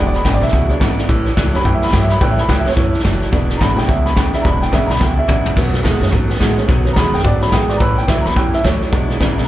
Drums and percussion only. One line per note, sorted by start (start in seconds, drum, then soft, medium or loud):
0.14 snare soft
0.25 kick medium
0.25 snare loud
0.25 hi-hat pedal medium
0.42 snare soft
0.48 snare soft
0.53 kick loud
0.53 snare soft
0.69 snare soft
0.81 kick medium
0.81 snare loud
0.81 hi-hat pedal medium
0.98 snare soft
1.09 kick loud
1.09 snare soft
1.26 snare soft
1.37 kick medium
1.37 snare loud
1.37 hi-hat pedal medium
1.54 snare soft
1.60 snare soft
1.65 kick loud
1.65 snare soft
1.82 snare soft
1.87 snare soft
1.93 kick medium
1.93 snare loud
1.93 hi-hat pedal medium
2.09 snare soft
2.21 kick loud
2.21 snare soft
2.37 snare soft
2.49 kick medium
2.49 snare loud
2.49 hi-hat pedal medium
2.66 snare soft
2.71 snare soft
2.77 kick loud
2.77 snare soft
2.94 snare soft
2.99 snare soft
3.05 kick medium
3.05 snare loud
3.05 hi-hat pedal medium
3.21 snare soft
3.33 kick loud
3.33 snare soft
3.49 snare soft
3.61 kick medium
3.61 snare loud
3.61 hi-hat pedal medium
3.78 snare soft
3.83 snare soft
3.89 kick loud
3.89 snare soft
4.06 snare soft
4.16 kick medium
4.16 snare loud
4.16 hi-hat pedal medium
4.33 snare soft
4.45 kick loud
4.45 snare soft
4.62 snare soft
4.73 kick medium
4.73 snare loud
4.73 hi-hat pedal medium
4.89 snare soft
4.95 snare soft
5.01 kick loud
5.01 snare medium
5.29 kick loud
5.29 hi-hat pedal medium
5.29 mid tom loud
5.46 floor tom loud
5.56 kick loud
5.56 snare soft
5.56 crash medium
5.74 snare soft
5.85 kick medium
5.85 snare loud
5.85 hi-hat pedal medium
6.02 snare soft
6.07 snare soft
6.13 kick loud
6.13 snare soft
6.29 snare soft
6.35 snare soft
6.41 kick medium
6.41 snare loud
6.41 hi-hat pedal medium
6.58 snare soft
6.69 kick loud
6.69 snare soft
6.86 snare soft
6.96 kick medium
6.96 snare loud
6.96 hi-hat pedal medium
7.13 snare soft
7.19 snare soft
7.25 kick loud
7.25 snare soft
7.41 snare soft
7.47 snare soft
7.52 kick medium
7.52 snare loud
7.52 hi-hat pedal medium
7.69 snare soft
7.80 kick loud
7.80 snare soft
7.97 snare soft
8.08 kick loud
8.08 snare loud
8.08 hi-hat pedal loud
8.25 snare soft
8.31 snare soft
8.36 kick loud
8.36 snare soft
8.53 snare soft
8.65 kick medium
8.65 snare loud
8.65 hi-hat pedal loud
8.82 snare soft
8.93 kick loud
8.93 snare soft
9.10 snare soft
9.21 kick medium
9.21 snare loud
9.21 hi-hat pedal medium
9.38 snare soft
9.43 snare soft